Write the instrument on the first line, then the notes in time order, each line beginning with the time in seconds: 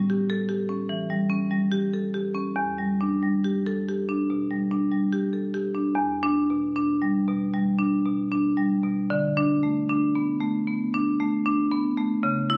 marimba
Already playing: A2 G3
0.10 G4
0.30 A4
0.49 G4
0.69 C#4
0.89 E3
1.10 G3
1.30 C#4
1.51 G3
1.72 G4
1.94 A4
2.14 G4
2.35 C#4
2.56 E2
2.78 G3
3.01 D4
3.23 G3
3.44 G4
3.66 A4
3.88 G4
4.09 D4
4.30 B2
4.51 G3
4.71 D4
4.92 G3
5.13 G4
5.33 A4
5.54 G4
5.75 D4
5.95 E2
6.23 D4
6.50 B2
6.76 D4
7.02 G3
7.28 B2
7.54 G3
7.79 D4
8.06 B2
8.32 D4
8.57 G3
8.84 B2
9.10 D3
9.37 D4
9.63 A3
9.90 D4
10.15 B3
10.40 A3
10.67 B3
10.94 D4
11.20 A3
11.46 D4
11.72 B3
11.97 A3
12.23 C#3
12.50 E4